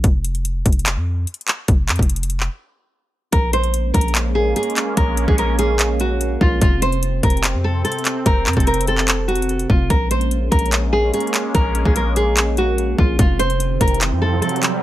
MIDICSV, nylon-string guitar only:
0, 0, Header, 1, 2, 480
1, 0, Start_track
1, 0, Key_signature, -5, "minor"
1, 0, Tempo, 410959
1, 46, Time_signature, 4, 2, 24, 8
1, 17318, End_track
2, 0, Start_track
2, 0, Title_t, "Nylon-string guitar"
2, 0, Program_c, 0, 24
2, 3881, Note_on_c, 0, 70, 86
2, 4093, Note_off_c, 0, 70, 0
2, 4126, Note_on_c, 0, 72, 86
2, 4577, Note_off_c, 0, 72, 0
2, 4598, Note_on_c, 0, 70, 81
2, 4811, Note_off_c, 0, 70, 0
2, 5080, Note_on_c, 0, 68, 90
2, 5292, Note_off_c, 0, 68, 0
2, 5328, Note_on_c, 0, 68, 82
2, 5778, Note_off_c, 0, 68, 0
2, 5804, Note_on_c, 0, 70, 90
2, 6144, Note_off_c, 0, 70, 0
2, 6168, Note_on_c, 0, 68, 73
2, 6272, Note_off_c, 0, 68, 0
2, 6291, Note_on_c, 0, 70, 83
2, 6498, Note_off_c, 0, 70, 0
2, 6527, Note_on_c, 0, 68, 79
2, 6978, Note_off_c, 0, 68, 0
2, 7013, Note_on_c, 0, 66, 75
2, 7461, Note_off_c, 0, 66, 0
2, 7498, Note_on_c, 0, 65, 79
2, 7702, Note_off_c, 0, 65, 0
2, 7733, Note_on_c, 0, 65, 89
2, 7939, Note_off_c, 0, 65, 0
2, 7965, Note_on_c, 0, 72, 78
2, 8417, Note_off_c, 0, 72, 0
2, 8451, Note_on_c, 0, 70, 80
2, 8658, Note_off_c, 0, 70, 0
2, 8926, Note_on_c, 0, 69, 84
2, 9136, Note_off_c, 0, 69, 0
2, 9162, Note_on_c, 0, 69, 71
2, 9615, Note_off_c, 0, 69, 0
2, 9652, Note_on_c, 0, 70, 93
2, 9988, Note_off_c, 0, 70, 0
2, 10008, Note_on_c, 0, 69, 78
2, 10112, Note_off_c, 0, 69, 0
2, 10128, Note_on_c, 0, 70, 85
2, 10337, Note_off_c, 0, 70, 0
2, 10372, Note_on_c, 0, 69, 80
2, 10820, Note_off_c, 0, 69, 0
2, 10838, Note_on_c, 0, 66, 72
2, 11293, Note_off_c, 0, 66, 0
2, 11329, Note_on_c, 0, 65, 84
2, 11537, Note_off_c, 0, 65, 0
2, 11563, Note_on_c, 0, 70, 84
2, 11774, Note_off_c, 0, 70, 0
2, 11807, Note_on_c, 0, 72, 86
2, 12258, Note_off_c, 0, 72, 0
2, 12280, Note_on_c, 0, 70, 83
2, 12492, Note_off_c, 0, 70, 0
2, 12762, Note_on_c, 0, 68, 88
2, 12973, Note_off_c, 0, 68, 0
2, 13009, Note_on_c, 0, 68, 84
2, 13459, Note_off_c, 0, 68, 0
2, 13486, Note_on_c, 0, 70, 90
2, 13824, Note_off_c, 0, 70, 0
2, 13848, Note_on_c, 0, 68, 72
2, 13952, Note_off_c, 0, 68, 0
2, 13971, Note_on_c, 0, 70, 83
2, 14178, Note_off_c, 0, 70, 0
2, 14207, Note_on_c, 0, 68, 80
2, 14658, Note_off_c, 0, 68, 0
2, 14693, Note_on_c, 0, 66, 79
2, 15141, Note_off_c, 0, 66, 0
2, 15175, Note_on_c, 0, 65, 78
2, 15381, Note_off_c, 0, 65, 0
2, 15410, Note_on_c, 0, 65, 90
2, 15618, Note_off_c, 0, 65, 0
2, 15643, Note_on_c, 0, 72, 80
2, 16096, Note_off_c, 0, 72, 0
2, 16131, Note_on_c, 0, 70, 78
2, 16338, Note_off_c, 0, 70, 0
2, 16604, Note_on_c, 0, 69, 84
2, 16815, Note_off_c, 0, 69, 0
2, 16840, Note_on_c, 0, 69, 71
2, 17294, Note_off_c, 0, 69, 0
2, 17318, End_track
0, 0, End_of_file